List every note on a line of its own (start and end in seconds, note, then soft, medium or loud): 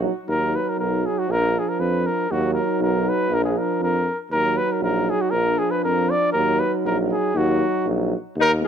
0.01 0.12 F#3 medium
0.01 0.12 D#4 medium
0.25 0.56 D#2 medium
0.25 1.28 F#3 soft
0.25 1.29 D#4 soft
0.25 0.57 A#4 medium
0.56 0.71 B4 medium
0.69 0.79 A#4 medium
0.78 1.06 B1 medium
0.78 1.07 A#4 medium
1.06 1.20 G#4 medium
1.19 1.33 F#4 medium
1.27 1.57 A#1 medium
1.27 2.29 F3 medium
1.27 2.30 D4 soft
1.31 1.60 A#4 medium
1.59 1.70 G#4 medium
1.69 1.81 A#4 medium
1.79 2.07 F2 medium
1.79 2.08 B4 medium
2.06 2.33 A#4 medium
2.30 2.59 D#2 medium
2.30 3.31 F#3 medium
2.30 3.32 D#4 medium
2.30 2.53 F#4 medium
2.54 2.79 A#4 medium
2.80 3.08 B1 medium
2.80 3.10 A#4 medium
3.09 3.36 B4 medium
3.29 3.58 A#1 medium
3.29 4.12 F3 medium
3.29 4.12 D4 medium
3.34 3.44 A#4 medium
3.44 3.60 G#4 medium
3.58 3.83 A#4 medium
3.80 4.09 F2 medium
3.80 4.18 A#4 medium
4.30 4.59 D#2 medium
4.30 5.35 F#3 medium
4.30 5.36 D#4 soft
4.30 4.59 A#4 loud
4.57 4.74 B4 medium
4.72 4.83 A#4 medium
4.81 5.09 A#1 medium
4.81 5.11 A#4 medium
5.10 5.23 G#4 medium
5.21 5.32 F#4 medium
5.31 5.61 A#1 medium
5.31 6.37 F3 medium
5.31 6.36 D4 medium
5.31 5.60 A#4 loud
5.58 5.72 G#4 medium
5.71 5.83 B4 medium
5.84 6.12 F2 medium
5.84 6.12 A#4 medium
6.10 6.32 D5 medium
6.33 6.62 D#2 medium
6.33 7.36 F#3 medium
6.33 7.35 D#4 medium
6.33 6.61 A#4 medium
6.59 6.73 B4 medium
6.84 7.12 A#1 medium
6.84 6.97 A#4 medium
7.13 7.38 G#4 medium
7.34 7.62 D#2 medium
7.34 8.15 F#3 medium
7.34 8.14 D#4 medium
7.34 7.87 F#4 loud
7.85 8.13 A#1 medium
8.35 8.63 D#2 medium
8.40 8.50 D#4 loud
8.40 8.51 A#4 loud
8.60 8.68 G#3 medium
8.60 8.68 B3 medium
8.60 8.68 F4 medium